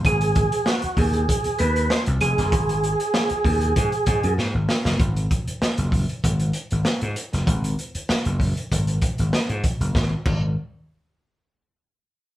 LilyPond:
<<
  \new Staff \with { instrumentName = "Tonewheel organ" } { \time 4/4 \key ges \lydian \tempo 4 = 97 aes'4 ges'8 aes'4 ces''8 c''8 aes'8~ | aes'2. r4 | r1 | r1 |
r1 | }
  \new Staff \with { instrumentName = "Slap bass" } { \clef bass \time 4/4 \key ges \lydian aes,,8. r8. ees,8 r8 ees,8 r16 c,16 f,,16 ges,,16 | aes,,8. r8. ees,8 aes,16 r16 aes,16 ges,16 aes,16 aes,,16 r16 ges,,16 | aes,,8 r8. ges,,8 r16 aes,,8 r16 aes,,16 r16 aes,16 r16 ges,,16 | aes,,8 r8. ges,,8 r16 aes,,8 r16 aes,,16 r16 aes,16 r16 ges,,16 |
aes,,16 r16 aes,,8 r2. | }
  \new DrumStaff \with { instrumentName = "Drums" } \drummode { \time 4/4 <hh bd>16 hh16 <hh bd>16 hh16 sn16 hh16 <hho bd>16 hh16 <hh bd>16 hh16 hh16 hh16 sn16 hh16 hh16 <hh sn>16 | <hh bd>16 hh16 hh16 hh16 sn16 hh16 <hho bd>16 hh16 <hh bd>16 hh16 <hh bd>16 hh16 sn8 sn16 sn16 | <hh bd>16 hh16 <hh bd>16 hh16 sn16 hh16 <hho bd>16 hh16 <hh bd>16 hh16 hh16 hh16 sn16 hh16 hh16 <hh sn>16 | <hh bd>16 hh16 hh16 hh16 sn16 hh16 <hho bd>16 hh16 <hh bd>16 hh16 <hh bd>16 hh16 sn16 hh16 <hh bd>16 hh16 |
<bd sn>8 <cymc bd>8 r4 r4 r4 | }
>>